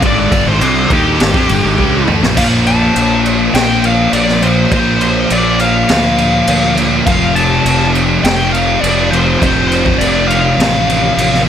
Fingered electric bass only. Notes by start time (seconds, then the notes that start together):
0.02 G#1
0.31 G1
0.47 G#1
0.62 C2
0.90 D#2
1.21 G#1
1.34 F2
1.50 G1
1.65 G#1
1.78 C#2
2.09 D2
2.23 A#1
2.37 A#1
2.96 A#1
3.54 A#1
4.13 A#1
4.72 A#1
5.31 A#1
5.90 D2
6.48 D2
7.06 F1
7.65 F1
8.24 F1
8.83 F1
9.42 F1
10.00 F1
10.58 A1
11.17 A1